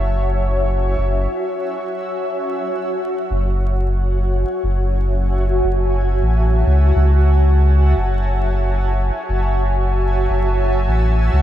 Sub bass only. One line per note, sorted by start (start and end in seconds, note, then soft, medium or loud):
0.00 0.95 F#1 loud
0.98 1.27 F#1 medium
3.31 4.44 F#1 medium
4.63 5.61 F#1 loud
5.64 6.22 F#1 medium
6.22 6.64 A1 loud
6.67 6.92 C#2 medium
6.96 7.94 C#2 loud
7.97 9.11 F#1 loud
9.29 10.27 F#1 loud
10.30 10.87 F#1 medium
10.88 11.30 A1 medium
11.33 11.42 C#2 medium